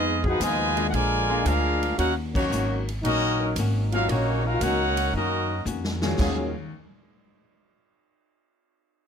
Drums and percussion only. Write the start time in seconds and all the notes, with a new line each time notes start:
0.24 kick
0.41 kick, hi-hat pedal, ride
0.77 ride
0.93 kick, ride
1.46 kick, hi-hat pedal, ride
1.83 ride
1.99 kick, ride
2.35 kick, crash
2.52 hi-hat pedal
2.88 ride
3.04 kick, ride
3.56 kick, hi-hat pedal, ride
3.92 ride
4.09 kick, ride
4.61 kick, hi-hat pedal, ride
4.97 ride
5.14 kick
5.66 hi-hat pedal
5.84 snare
6.02 snare
6.19 kick, snare, crash